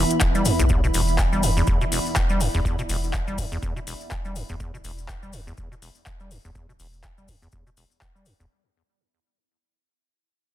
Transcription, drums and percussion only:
0.10 closed hi-hat soft
0.10 cabasa soft
0.21 kick loud
0.21 clap loud
0.21 closed hi-hat medium
0.21 cabasa medium
0.35 closed hi-hat soft
0.35 cabasa soft
0.45 mid tom medium
0.45 open hi-hat medium
0.45 cabasa medium
0.59 closed hi-hat soft
0.59 cabasa soft
0.69 kick loud
0.69 cabasa soft
0.84 cabasa soft
0.94 open hi-hat loud
0.94 cabasa medium
1.08 cabasa soft
1.19 kick loud
1.19 clap loud
1.19 cabasa medium
1.33 cabasa soft
1.43 open hi-hat medium
1.43 cabasa medium
1.57 cabasa soft
1.67 kick loud
1.67 cabasa soft
1.81 cabasa soft
1.92 open hi-hat loud
1.92 cabasa medium
2.06 cabasa soft
2.16 kick loud
2.16 clap loud
2.16 cabasa medium
2.29 cabasa soft
2.41 open hi-hat medium
2.41 cabasa medium
2.54 cabasa soft
2.65 kick loud
2.65 cabasa soft
2.79 cabasa soft
2.89 open hi-hat medium
2.89 cabasa medium
3.04 cabasa soft
3.14 kick loud
3.14 clap loud
3.14 cabasa soft
3.28 cabasa soft
3.38 kick medium
3.38 open hi-hat medium
3.38 cabasa medium
3.52 cabasa soft
3.63 kick loud
3.63 cabasa soft
3.77 cabasa soft
3.87 open hi-hat loud
3.87 cabasa medium
4.00 cabasa soft
4.11 kick loud
4.11 clap loud
4.11 cabasa soft
4.25 cabasa soft
4.36 open hi-hat medium
4.36 cabasa medium
4.49 cabasa soft
4.60 kick loud
4.60 cabasa soft
4.75 cabasa soft
4.84 open hi-hat medium
4.84 cabasa medium
4.98 cabasa soft
5.09 kick loud
5.09 clap loud
5.09 cabasa soft
5.23 cabasa soft
5.33 open hi-hat medium
5.33 cabasa medium
5.48 cabasa soft
5.58 kick loud
5.58 cabasa soft
5.72 cabasa soft
5.82 open hi-hat medium
5.82 cabasa medium
5.95 cabasa soft
6.06 kick loud
6.06 clap loud
6.06 cabasa soft
6.20 cabasa soft
6.31 open hi-hat medium
6.31 cabasa medium
6.45 cabasa soft
6.55 kick loud
6.55 cabasa soft
6.70 cabasa soft
6.80 open hi-hat medium
6.80 cabasa medium
6.93 cabasa soft
7.03 kick loud
7.03 clap loud
7.03 cabasa soft
7.18 cabasa soft
7.28 kick medium
7.28 open hi-hat medium
7.28 cabasa medium
7.42 cabasa soft
7.52 kick loud
7.52 cabasa soft
7.67 cabasa soft
7.77 open hi-hat medium
7.77 cabasa medium
7.91 cabasa soft
8.01 kick loud
8.01 clap loud
8.01 cabasa medium
8.16 cabasa soft
8.26 open hi-hat medium
8.26 cabasa medium
8.40 cabasa soft

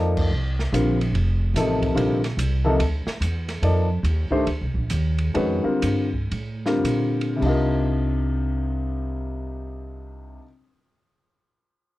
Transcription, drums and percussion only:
0.17 kick medium
0.17 crash medium
0.59 snare soft
0.74 hi-hat pedal medium
0.74 ride medium
1.01 ride soft
1.15 ride soft
1.56 hi-hat pedal medium
1.56 ride medium
1.82 kick medium
1.82 ride soft
1.97 ride medium
2.24 snare soft
2.24 ride soft
2.39 hi-hat pedal medium
2.39 ride medium
2.80 ride medium
3.07 snare medium
3.22 hi-hat pedal soft
3.22 ride medium
3.48 snare soft
3.48 ride soft
3.63 ride soft
4.05 hi-hat pedal medium
4.05 ride medium
4.31 kick medium
4.47 ride soft
4.74 kick soft
4.90 hi-hat pedal medium
4.90 ride medium
5.18 ride soft
5.35 ride medium
5.82 hi-hat pedal medium
5.82 ride medium
6.14 kick soft
6.31 ride soft
6.66 snare soft
6.85 hi-hat pedal soft
6.85 ride medium
7.21 ride soft
7.42 kick soft
7.42 crash medium

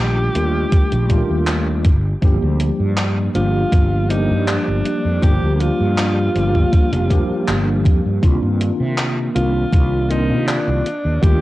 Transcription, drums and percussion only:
0.35 closed hi-hat medium
0.72 kick loud
0.72 closed hi-hat medium
0.92 closed hi-hat soft
1.10 kick medium
1.10 closed hi-hat medium
1.47 clap loud
1.47 closed hi-hat medium
1.85 kick loud
1.85 closed hi-hat medium
2.22 kick loud
2.22 closed hi-hat medium
2.60 closed hi-hat medium
2.98 clap loud
2.98 closed hi-hat medium
3.35 closed hi-hat medium
3.72 kick loud
3.72 closed hi-hat medium
4.10 closed hi-hat medium
4.48 clap loud
4.48 closed hi-hat medium
4.85 closed hi-hat medium
5.23 kick loud
5.23 closed hi-hat medium
5.60 closed hi-hat medium
5.98 clap loud
5.98 closed hi-hat medium
6.36 closed hi-hat medium
6.55 kick medium
6.73 kick loud
6.73 closed hi-hat medium
6.93 closed hi-hat soft
7.10 kick medium
7.10 closed hi-hat medium
7.48 clap loud
7.48 closed hi-hat medium
7.85 kick loud
7.85 closed hi-hat medium
8.23 kick loud
8.23 closed hi-hat medium
8.61 closed hi-hat medium
8.98 clap loud
8.98 closed hi-hat medium
9.36 closed hi-hat medium
9.73 kick loud
9.73 closed hi-hat medium
10.11 closed hi-hat medium
10.49 clap loud
10.49 closed hi-hat medium
10.86 closed hi-hat medium
11.23 kick loud
11.23 closed hi-hat medium

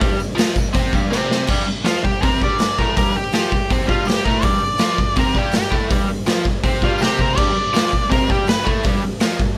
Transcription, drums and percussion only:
0.01 kick loud
0.01 open hi-hat medium
0.01 tambourine soft
0.20 tambourine medium
0.38 snare loud
0.38 open hi-hat medium
0.38 tambourine loud
0.56 kick medium
0.56 tambourine medium
0.73 kick loud
0.73 open hi-hat medium
0.73 tambourine medium
0.93 kick medium
0.93 tambourine medium
1.12 snare medium
1.12 tambourine loud
1.31 snare medium
1.47 kick loud
1.47 crash loud
1.85 snare loud
1.85 open hi-hat medium
1.85 tambourine medium
2.05 kick medium
2.23 kick loud
2.23 open hi-hat medium
2.42 kick medium
2.59 snare loud
2.59 open hi-hat medium
2.59 tambourine medium
2.79 kick medium
2.96 kick loud
2.96 open hi-hat medium
3.32 snare loud
3.32 open hi-hat medium
3.32 tambourine medium
3.52 kick medium
3.70 kick loud
3.70 open hi-hat medium
3.89 kick medium
4.05 open hi-hat medium
4.05 tambourine loud
4.10 snare loud
4.26 kick medium
4.42 kick loud
4.42 open hi-hat medium
4.78 snare loud
4.78 open hi-hat medium
4.78 tambourine loud
4.98 kick medium
5.16 kick loud
5.16 open hi-hat medium
5.35 kick medium
5.52 snare loud
5.52 open hi-hat medium
5.52 tambourine medium
5.72 kick medium
5.91 kick loud
5.91 open hi-hat medium
6.26 snare loud
6.26 open hi-hat medium
6.26 tambourine medium
6.45 kick medium
6.64 kick loud
6.64 open hi-hat medium
6.82 kick medium
6.98 open hi-hat medium
6.98 tambourine medium
7.03 snare loud
7.19 kick medium
7.38 kick loud
7.38 crash loud
7.74 snare loud
7.74 open hi-hat medium
7.74 tambourine loud
7.93 kick medium
8.12 kick loud
8.12 open hi-hat medium
8.30 kick medium
8.47 snare loud
8.47 open hi-hat medium
8.47 tambourine medium
8.67 kick medium
8.83 kick loud
8.83 open hi-hat medium
9.20 snare loud
9.20 open hi-hat medium
9.20 tambourine medium
9.40 kick medium

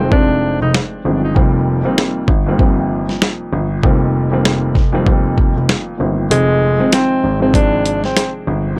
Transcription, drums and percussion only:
0.12 kick loud
0.74 snare loud
0.74 snare medium
1.36 kick loud
1.98 snare loud
2.28 kick loud
2.59 kick loud
3.09 snare soft
3.22 snare loud
3.22 snare medium
3.83 kick loud
4.45 snare loud
4.75 kick medium
4.75 snare soft
5.07 kick loud
5.38 kick medium
5.69 snare loud
5.69 snare medium
6.31 closed hi-hat medium
6.92 snare loud
6.92 closed hi-hat medium
7.54 kick loud
7.54 closed hi-hat medium
7.86 closed hi-hat medium
8.04 snare soft
8.17 snare loud
8.17 snare medium
8.17 closed hi-hat medium

